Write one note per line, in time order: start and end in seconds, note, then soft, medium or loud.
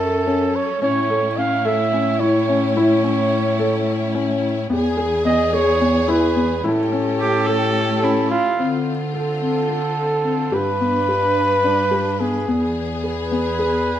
0.00 0.65 F#2 medium
0.00 0.79 F#3 medium
0.00 4.67 C#4 medium
0.00 0.57 A4 medium
0.00 0.79 A4 medium
0.27 0.57 C#4 medium
0.55 0.82 C#5 medium
0.82 4.66 A2 medium
0.82 4.67 A3 medium
0.82 0.97 C#4 medium
0.82 4.67 E4 medium
0.82 1.39 C#5 medium
1.10 1.25 A4 medium
1.37 1.53 C#4 medium
1.37 1.67 F5 medium
1.65 1.80 A4 medium
1.65 2.22 E5 medium
1.93 2.08 C#4 medium
2.20 2.36 E4 medium
2.20 2.74 C#5 medium
2.49 2.64 C#4 medium
2.75 2.92 E4 medium
2.75 4.38 C#5 medium
3.03 3.34 C#4 medium
3.59 3.90 A4 medium
4.15 4.45 C#4 medium
4.70 6.60 E2 medium
4.70 6.64 E3 medium
4.70 4.85 B3 medium
4.70 6.64 B3 medium
4.70 5.22 G#4 medium
4.70 6.63 G#4 medium
4.97 5.13 G#4 medium
5.25 5.41 B3 medium
5.25 5.55 D#5 loud
5.53 5.69 G#4 medium
5.53 6.11 C#5 loud
5.81 5.96 B3 medium
6.08 6.24 E4 medium
6.08 6.65 B4 medium
6.36 6.52 B3 medium
6.64 8.42 A2 medium
6.64 8.57 A3 medium
6.64 8.57 C#4 medium
6.64 6.79 E4 medium
6.64 8.57 G4 medium
6.64 8.28 A4 medium
6.92 7.23 C#4 medium
7.20 7.48 G4 medium
7.47 8.05 A4 medium
7.47 7.78 A4 medium
8.03 8.34 C#4 medium
8.03 8.59 E4 medium
8.30 8.82 F4 loud
8.59 10.50 D3 medium
8.59 10.52 D3 medium
8.59 8.89 C4 medium
8.59 10.52 C4 medium
8.59 10.52 F4 medium
9.14 9.29 A4 medium
9.14 10.55 A4 medium
9.41 9.57 C4 medium
9.69 10.00 A4 medium
10.24 10.40 C4 medium
10.52 12.44 G2 medium
10.52 12.46 G3 medium
10.52 12.46 D4 medium
10.52 10.68 G4 medium
10.52 12.46 B4 medium
10.52 12.21 B4 loud
10.81 10.96 B3 medium
11.09 11.39 G4 medium
11.64 11.80 D4 medium
11.91 12.07 G4 medium
12.20 12.36 B3 medium
12.20 12.76 G#4 medium
12.48 14.00 E2 medium
12.48 14.00 E3 medium
12.48 14.00 B3 medium
12.48 12.79 B3 medium
12.48 14.00 G#4 medium
13.03 13.19 G#4 medium
13.03 14.00 B4 medium
13.32 13.47 B3 medium
13.59 13.90 G#4 medium